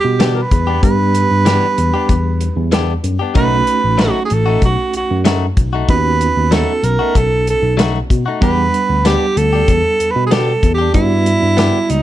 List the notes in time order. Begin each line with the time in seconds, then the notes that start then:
Already playing: G3 B3 D4 F#5
0.00 G4
0.04 B2
0.20 E3 B3 D4 G4, snare, closed hi-hat
0.35 A#4
0.42 B4
0.51 E2, kick, closed hi-hat
0.67 B3 D4 G4
0.82 G2 G3 B3 D4 G4 B4, kick, closed hi-hat
1.15 closed hi-hat
1.31 G2
1.45 E3 B3 D4 G4, snare, closed hi-hat
1.77 E2, closed hi-hat
1.94 B3 D4 G4
2.09 E2, kick, closed hi-hat
2.41 closed hi-hat
2.57 E2
2.72 E3 B3 D4 G4, snare, closed hi-hat
3.04 F#2, closed hi-hat
3.19 B3 D4 G4
3.34 B1 F#3 A3 C#4 D#4 F#4 B4, kick, closed hi-hat
3.67 closed hi-hat
3.84 A1
3.98 F#3 A3 D#4 F#4, snare, closed hi-hat
4.25 G#4
4.30 A1 A4, closed hi-hat
4.46 A3 D#4 F#4
4.62 B1 F#4, kick, closed hi-hat
4.93 B1 F#4, closed hi-hat
5.11 F#2
5.25 F#3 A3 D#4 F#4, snare, closed hi-hat
5.57 B1, kick, closed hi-hat
5.73 A3 D#4 F#4
5.89 D#2 B3 C#4 D#4 F#4 B4, kick, closed hi-hat
6.21 closed hi-hat
6.37 D#2
6.51 F#3 A3 D#4 F#4 A4, snare, closed hi-hat
6.83 B1 A#4, closed hi-hat
6.99 A3 D#4 F#4
7.15 B1 A4, kick, closed hi-hat
7.47 A4, closed hi-hat
7.63 B1
7.77 F#3 A3 D#4 F#4, snare, closed hi-hat
8.10 B2, kick, closed hi-hat
8.26 A3 D#4 F#4
8.41 E2 G3 B3 D4 G4 B4 F#5, kick, closed hi-hat
8.74 closed hi-hat
8.89 D2
9.05 B3 D4 G4, snare, closed hi-hat
9.36 D2 A4, closed hi-hat
9.53 D4 G4
9.68 E2, kick, closed hi-hat
10.00 E2, closed hi-hat
10.11 B4
10.16 B2
10.26 G#4
10.31 B3 D4 G4 A4, snare, closed hi-hat
10.63 E2, kick, closed hi-hat
10.74 G4
10.78 D4 G4
10.94 G2 G3 B3 E4 F#4 D5, kick, closed hi-hat
11.26 closed hi-hat
11.43 G2
11.57 B3 D4 G4, snare, closed hi-hat
11.90 C#2 D#4, closed hi-hat